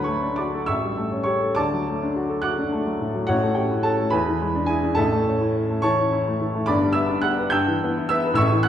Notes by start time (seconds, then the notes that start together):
Already playing: D2 F#3 B4 F#5 B5
0.04 A3 C#5 C#6
0.22 D4
0.36 F#4 D5 D6
0.54 A4
0.66 A1 E5 C#6 E6
0.82 G3
0.97 A3
1.11 C#4
1.23 G4 C#5 C#6
1.42 A4
1.55 D2 D5 A5 D6
1.73 F#3
1.88 A3
2.02 D4
2.16 F#4
2.29 A4
2.42 F#4 F#5 D6 F#6
2.59 D4
2.72 A3
2.86 F#3
3.01 A2
3.14 F#3
3.27 A1 A2 F#4 C#5 F#5
3.43 A3
3.55 C#4 G4 G5
3.71 E4
3.83 C#4 A4 A5
4.00 A3
4.10 E2 B4 G#5 B5
4.28 E3
4.41 G#3
4.55 D4
4.66 E4 G#4 G#5
4.83 D4
4.95 A1 A2 A4 E5 A5
5.12 A3
5.28 C#4
5.41 E4
5.57 C#4
5.70 A3
5.82 E3 C#5 A5 C#6
5.98 C#4
6.12 E4
6.27 A3
6.41 E3
6.55 A3
6.66 G1 G2 D5 B5 D6
6.82 G3
6.93 B3 E5 E6
7.09 D4
7.21 G4 F#5 F#6
7.39 B4
7.50 G2 G5 E6 G6
7.68 E3
7.84 B3
7.98 E4
8.09 B3 E5 E6
8.25 B4
8.34 A1 A2 E5 C#6 E6
8.52 E3
8.63 F#5 F#6